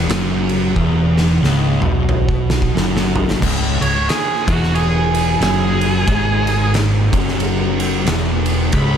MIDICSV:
0, 0, Header, 1, 5, 480
1, 0, Start_track
1, 0, Key_signature, 4, "minor"
1, 0, Tempo, 665188
1, 548, Time_signature, 4, 2, 24, 8
1, 6476, End_track
2, 0, Start_track
2, 0, Title_t, "Lead electric guitar"
2, 0, Program_c, 0, 29
2, 2754, Note_on_c, 0, 73, 88
2, 2942, Note_off_c, 0, 73, 0
2, 2950, Note_on_c, 0, 68, 95
2, 3223, Note_off_c, 0, 68, 0
2, 3233, Note_on_c, 0, 66, 99
2, 3422, Note_off_c, 0, 66, 0
2, 3428, Note_on_c, 0, 68, 82
2, 3892, Note_off_c, 0, 68, 0
2, 3905, Note_on_c, 0, 68, 95
2, 4836, Note_off_c, 0, 68, 0
2, 6311, Note_on_c, 0, 83, 112
2, 6464, Note_off_c, 0, 83, 0
2, 6476, End_track
3, 0, Start_track
3, 0, Title_t, "Distorted electric guitar"
3, 0, Program_c, 1, 30
3, 65, Note_on_c, 1, 42, 104
3, 540, Note_off_c, 1, 42, 0
3, 545, Note_on_c, 1, 40, 111
3, 1020, Note_off_c, 1, 40, 0
3, 1026, Note_on_c, 1, 37, 108
3, 1302, Note_off_c, 1, 37, 0
3, 1311, Note_on_c, 1, 47, 105
3, 1981, Note_off_c, 1, 47, 0
3, 1989, Note_on_c, 1, 42, 102
3, 2462, Note_off_c, 1, 42, 0
3, 2465, Note_on_c, 1, 37, 105
3, 2740, Note_off_c, 1, 37, 0
3, 2752, Note_on_c, 1, 37, 81
3, 2908, Note_off_c, 1, 37, 0
3, 3229, Note_on_c, 1, 40, 109
3, 3898, Note_off_c, 1, 40, 0
3, 3901, Note_on_c, 1, 42, 110
3, 4377, Note_off_c, 1, 42, 0
3, 4380, Note_on_c, 1, 44, 105
3, 5138, Note_off_c, 1, 44, 0
3, 5142, Note_on_c, 1, 42, 106
3, 5816, Note_off_c, 1, 42, 0
3, 5821, Note_on_c, 1, 40, 115
3, 6298, Note_off_c, 1, 40, 0
3, 6301, Note_on_c, 1, 37, 118
3, 6476, Note_off_c, 1, 37, 0
3, 6476, End_track
4, 0, Start_track
4, 0, Title_t, "Fingered electric bass"
4, 0, Program_c, 2, 33
4, 71, Note_on_c, 2, 30, 101
4, 520, Note_off_c, 2, 30, 0
4, 550, Note_on_c, 2, 28, 105
4, 1000, Note_off_c, 2, 28, 0
4, 1030, Note_on_c, 2, 25, 96
4, 1292, Note_off_c, 2, 25, 0
4, 1306, Note_on_c, 2, 35, 96
4, 1955, Note_off_c, 2, 35, 0
4, 1994, Note_on_c, 2, 30, 94
4, 2441, Note_off_c, 2, 30, 0
4, 2471, Note_on_c, 2, 25, 105
4, 2732, Note_off_c, 2, 25, 0
4, 2749, Note_on_c, 2, 25, 84
4, 2932, Note_off_c, 2, 25, 0
4, 3231, Note_on_c, 2, 28, 95
4, 3877, Note_off_c, 2, 28, 0
4, 3899, Note_on_c, 2, 30, 92
4, 4353, Note_off_c, 2, 30, 0
4, 4384, Note_on_c, 2, 32, 110
4, 5119, Note_off_c, 2, 32, 0
4, 5144, Note_on_c, 2, 30, 103
4, 5794, Note_off_c, 2, 30, 0
4, 5824, Note_on_c, 2, 28, 98
4, 6276, Note_off_c, 2, 28, 0
4, 6300, Note_on_c, 2, 25, 107
4, 6476, Note_off_c, 2, 25, 0
4, 6476, End_track
5, 0, Start_track
5, 0, Title_t, "Drums"
5, 68, Note_on_c, 9, 51, 106
5, 77, Note_on_c, 9, 38, 116
5, 141, Note_off_c, 9, 51, 0
5, 149, Note_off_c, 9, 38, 0
5, 356, Note_on_c, 9, 51, 71
5, 428, Note_off_c, 9, 51, 0
5, 550, Note_on_c, 9, 36, 71
5, 622, Note_off_c, 9, 36, 0
5, 848, Note_on_c, 9, 38, 71
5, 920, Note_off_c, 9, 38, 0
5, 1040, Note_on_c, 9, 38, 73
5, 1112, Note_off_c, 9, 38, 0
5, 1312, Note_on_c, 9, 47, 88
5, 1384, Note_off_c, 9, 47, 0
5, 1507, Note_on_c, 9, 45, 87
5, 1579, Note_off_c, 9, 45, 0
5, 1649, Note_on_c, 9, 36, 84
5, 1722, Note_off_c, 9, 36, 0
5, 1803, Note_on_c, 9, 38, 106
5, 1876, Note_off_c, 9, 38, 0
5, 1891, Note_on_c, 9, 36, 77
5, 1963, Note_off_c, 9, 36, 0
5, 2000, Note_on_c, 9, 38, 103
5, 2072, Note_off_c, 9, 38, 0
5, 2140, Note_on_c, 9, 38, 90
5, 2212, Note_off_c, 9, 38, 0
5, 2277, Note_on_c, 9, 43, 110
5, 2349, Note_off_c, 9, 43, 0
5, 2383, Note_on_c, 9, 38, 92
5, 2455, Note_off_c, 9, 38, 0
5, 2470, Note_on_c, 9, 36, 112
5, 2475, Note_on_c, 9, 49, 127
5, 2542, Note_off_c, 9, 36, 0
5, 2547, Note_off_c, 9, 49, 0
5, 2758, Note_on_c, 9, 51, 88
5, 2830, Note_off_c, 9, 51, 0
5, 2952, Note_on_c, 9, 51, 102
5, 2961, Note_on_c, 9, 38, 111
5, 3024, Note_off_c, 9, 51, 0
5, 3033, Note_off_c, 9, 38, 0
5, 3232, Note_on_c, 9, 36, 112
5, 3237, Note_on_c, 9, 51, 79
5, 3304, Note_off_c, 9, 36, 0
5, 3309, Note_off_c, 9, 51, 0
5, 3344, Note_on_c, 9, 38, 32
5, 3416, Note_off_c, 9, 38, 0
5, 3430, Note_on_c, 9, 51, 107
5, 3502, Note_off_c, 9, 51, 0
5, 3712, Note_on_c, 9, 51, 85
5, 3784, Note_off_c, 9, 51, 0
5, 3907, Note_on_c, 9, 51, 104
5, 3916, Note_on_c, 9, 38, 118
5, 3979, Note_off_c, 9, 51, 0
5, 3988, Note_off_c, 9, 38, 0
5, 4194, Note_on_c, 9, 51, 80
5, 4266, Note_off_c, 9, 51, 0
5, 4384, Note_on_c, 9, 36, 115
5, 4386, Note_on_c, 9, 51, 103
5, 4456, Note_off_c, 9, 36, 0
5, 4458, Note_off_c, 9, 51, 0
5, 4669, Note_on_c, 9, 51, 81
5, 4741, Note_off_c, 9, 51, 0
5, 4863, Note_on_c, 9, 51, 97
5, 4871, Note_on_c, 9, 38, 100
5, 4935, Note_off_c, 9, 51, 0
5, 4943, Note_off_c, 9, 38, 0
5, 5145, Note_on_c, 9, 36, 107
5, 5147, Note_on_c, 9, 51, 87
5, 5217, Note_off_c, 9, 36, 0
5, 5220, Note_off_c, 9, 51, 0
5, 5255, Note_on_c, 9, 38, 34
5, 5327, Note_off_c, 9, 38, 0
5, 5339, Note_on_c, 9, 51, 107
5, 5411, Note_off_c, 9, 51, 0
5, 5627, Note_on_c, 9, 51, 87
5, 5699, Note_off_c, 9, 51, 0
5, 5819, Note_on_c, 9, 51, 114
5, 5828, Note_on_c, 9, 38, 124
5, 5891, Note_off_c, 9, 51, 0
5, 5900, Note_off_c, 9, 38, 0
5, 6102, Note_on_c, 9, 51, 93
5, 6175, Note_off_c, 9, 51, 0
5, 6294, Note_on_c, 9, 51, 115
5, 6299, Note_on_c, 9, 36, 114
5, 6366, Note_off_c, 9, 51, 0
5, 6372, Note_off_c, 9, 36, 0
5, 6476, End_track
0, 0, End_of_file